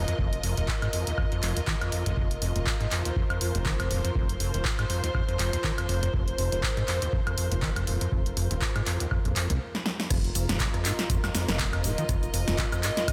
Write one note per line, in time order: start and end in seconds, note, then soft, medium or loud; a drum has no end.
0.00 9.61 F4 medium
0.00 9.61 A#4 medium
0.00 3.08 D#5 medium
0.08 0.14 F2 loud
0.08 closed hi-hat medium
0.19 0.39 F1 loud
0.19 0.30 F2 medium
0.19 kick loud
0.33 closed hi-hat soft
0.43 0.55 F1 medium
0.43 0.55 F2 medium
0.43 open hi-hat loud
0.57 0.66 D#1 loud
0.57 0.61 D#2 loud
0.57 closed hi-hat medium
0.68 kick loud
0.68 clap loud
0.82 0.88 G#2 loud
0.82 closed hi-hat soft
0.82 high woodblock medium
0.93 1.05 F2 medium
0.93 open hi-hat medium
1.07 1.13 D#2 medium
1.07 closed hi-hat medium
1.18 1.26 F2 medium
1.18 kick loud
1.18 high woodblock medium
1.32 1.41 F2 medium
1.32 closed hi-hat soft
1.43 1.54 F1 loud
1.43 1.54 F2 medium
1.43 clap medium
1.43 open hi-hat loud
1.57 1.60 D#2 loud
1.57 closed hi-hat medium
1.67 1.75 D#3 medium
1.67 kick loud
1.67 clap loud
1.81 1.90 F2 medium
1.81 closed hi-hat soft
1.81 high woodblock medium
1.92 2.04 F2 medium
1.92 open hi-hat medium
2.06 2.15 G#1 medium
2.06 2.12 F2 loud
2.06 closed hi-hat medium
2.17 2.38 F1 loud
2.17 2.29 F2 medium
2.17 kick loud
2.31 closed hi-hat soft
2.42 2.53 F1 medium
2.42 2.53 F2 medium
2.42 open hi-hat loud
2.56 2.65 D#1 loud
2.56 2.59 D#2 loud
2.56 closed hi-hat medium
2.67 kick loud
2.67 clap loud
2.81 2.87 G#2 loud
2.81 closed hi-hat soft
2.91 3.03 F2 medium
2.91 clap medium
2.91 open hi-hat medium
3.05 3.11 D#2 medium
3.05 9.63 C5 medium
3.05 closed hi-hat medium
3.16 3.24 F2 medium
3.16 kick loud
3.30 3.39 F2 medium
3.30 closed hi-hat soft
3.30 high woodblock medium
3.41 3.53 F2 medium
3.41 open hi-hat loud
3.55 3.87 F1 medium
3.55 3.59 D#2 loud
3.55 closed hi-hat medium
3.66 3.73 D#3 medium
3.66 kick loud
3.66 clap loud
3.80 3.89 F2 medium
3.80 closed hi-hat soft
3.80 high woodblock medium
3.91 4.02 D#1 loud
3.91 4.02 F2 medium
3.91 open hi-hat medium
4.05 4.11 F2 loud
4.05 closed hi-hat medium
4.15 4.36 F1 loud
4.15 4.27 F2 medium
4.15 kick loud
4.29 closed hi-hat medium
4.40 4.52 F1 medium
4.40 4.52 F2 medium
4.40 open hi-hat medium
4.54 4.63 D#1 loud
4.54 4.58 D#2 loud
4.54 closed hi-hat medium
4.65 kick loud
4.65 clap loud
4.79 4.85 G#2 loud
4.79 closed hi-hat soft
4.79 high woodblock medium
4.90 5.01 F2 medium
4.90 open hi-hat medium
5.04 5.10 D#2 medium
5.04 closed hi-hat medium
5.15 5.22 F2 medium
5.15 kick loud
5.15 high woodblock medium
5.29 5.38 F2 medium
5.29 closed hi-hat soft
5.39 5.51 F1 loud
5.39 5.51 F2 medium
5.39 clap medium
5.39 open hi-hat loud
5.53 5.57 D#2 loud
5.53 closed hi-hat medium
5.64 5.72 D#3 medium
5.64 kick loud
5.64 clap loud
5.78 5.87 F2 medium
5.78 closed hi-hat medium
5.78 high woodblock medium
5.89 6.10 F1 medium
5.89 6.00 F2 medium
5.89 open hi-hat medium
6.03 6.09 F2 loud
6.03 closed hi-hat medium
6.14 6.35 F1 loud
6.14 6.25 F2 medium
6.14 kick loud
6.28 closed hi-hat medium
6.38 6.50 F1 medium
6.38 6.50 F2 medium
6.38 open hi-hat medium
6.52 6.61 D#1 loud
6.52 6.56 D#2 loud
6.52 closed hi-hat medium
6.63 kick loud
6.63 clap loud
6.77 6.83 G#2 loud
6.77 closed hi-hat soft
6.88 7.00 F2 medium
6.88 clap medium
6.88 open hi-hat medium
7.02 7.08 D#2 medium
7.02 closed hi-hat medium
7.13 7.21 F2 medium
7.13 kick loud
7.27 7.36 F2 medium
7.27 closed hi-hat soft
7.27 high woodblock medium
7.38 7.49 F2 medium
7.38 open hi-hat loud
7.52 7.84 F1 loud
7.52 7.55 D#2 loud
7.52 closed hi-hat medium
7.62 7.70 D#3 medium
7.62 kick medium
7.62 clap loud
7.76 7.85 F2 medium
7.76 closed hi-hat medium
7.76 high woodblock medium
7.87 7.99 D#1 loud
7.87 7.99 F2 medium
7.87 open hi-hat medium
8.01 8.07 F2 loud
8.01 closed hi-hat medium
8.12 8.33 F1 loud
8.12 8.24 F2 medium
8.12 kick loud
8.26 closed hi-hat medium
8.37 8.48 F1 medium
8.37 8.48 F2 medium
8.37 open hi-hat loud
8.51 8.60 D#1 loud
8.51 8.54 D#2 loud
8.51 closed hi-hat medium
8.62 kick loud
8.62 clap loud
8.76 8.82 G#2 loud
8.76 closed hi-hat soft
8.76 high woodblock medium
8.86 8.98 F2 medium
8.86 clap medium
8.86 open hi-hat medium
9.00 9.06 D#2 medium
9.00 closed hi-hat medium
9.11 9.19 F2 medium
9.11 kick loud
9.11 high woodblock medium
9.25 9.34 A#1 medium
9.25 9.34 F2 medium
9.25 closed hi-hat soft
9.36 9.48 F2 medium
9.36 clap medium
9.36 open hi-hat loud
9.50 9.59 C2 medium
9.50 9.54 D#2 loud
9.50 closed hi-hat medium
9.75 snare medium
9.86 snare medium
10.00 snare medium
10.10 10.31 F1 loud
10.10 10.18 F2 medium
10.10 13.13 F4 medium
10.10 kick loud
10.10 cross-stick medium
10.10 closed hi-hat medium
10.10 crash loud
10.10 shaker soft
10.24 13.13 A#4 medium
10.24 closed hi-hat soft
10.35 10.47 F1 medium
10.35 10.47 F2 medium
10.35 open hi-hat loud
10.35 shaker medium
10.49 10.58 D#1 loud
10.49 10.58 F2 medium
10.49 snare medium
10.49 closed hi-hat medium
10.49 shaker soft
10.54 13.13 D#5 medium
10.60 10.68 F1 medium
10.60 kick loud
10.60 clap loud
10.60 closed hi-hat medium
10.60 shaker soft
10.74 10.86 F2 medium
10.74 cross-stick soft
10.74 closed hi-hat soft
10.85 10.93 G#2 medium
10.85 clap medium
10.85 open hi-hat loud
10.85 shaker medium
10.99 snare medium
10.99 closed hi-hat medium
10.99 shaker soft
11.10 11.17 F2 loud
11.10 kick loud
11.10 closed hi-hat medium
11.10 shaker soft
11.24 11.30 F2 medium
11.24 snare medium
11.24 closed hi-hat soft
11.24 high woodblock medium
11.24 shaker soft
11.35 11.46 F2 medium
11.35 snare medium
11.35 open hi-hat loud
11.35 shaker medium
11.48 11.81 F1 medium
11.48 11.57 F2 medium
11.48 cross-stick medium
11.48 snare medium
11.48 closed hi-hat medium
11.48 shaker soft
11.59 11.67 F1 medium
11.59 kick loud
11.59 clap loud
11.59 closed hi-hat medium
11.59 shaker soft
11.73 11.86 F2 medium
11.73 closed hi-hat soft
11.73 high woodblock medium
11.84 11.95 D#1 loud
11.84 11.92 G#2 medium
11.84 open hi-hat medium
11.84 shaker medium
11.98 12.04 D#3 medium
11.98 closed hi-hat medium
11.98 shaker soft
12.09 12.30 F1 loud
12.09 12.17 F2 loud
12.09 kick loud
12.09 cross-stick medium
12.09 closed hi-hat medium
12.09 shaker soft
12.23 closed hi-hat soft
12.23 shaker soft
12.34 12.45 F1 medium
12.34 12.45 F2 medium
12.34 open hi-hat loud
12.34 shaker medium
12.48 12.56 D#1 loud
12.48 12.57 F2 medium
12.48 snare medium
12.48 closed hi-hat medium
12.48 shaker soft
12.58 12.66 F1 medium
12.58 kick loud
12.58 clap loud
12.58 closed hi-hat medium
12.58 shaker soft
12.72 12.85 F2 medium
12.72 cross-stick soft
12.72 closed hi-hat soft
12.72 high woodblock medium
12.72 shaker soft
12.83 12.91 G#2 medium
12.83 clap medium
12.83 open hi-hat loud
12.83 shaker medium
12.97 snare medium
12.97 closed hi-hat medium
12.97 shaker soft
13.08 13.13 F2 loud
13.08 kick loud
13.08 closed hi-hat medium
13.08 high woodblock medium
13.08 shaker soft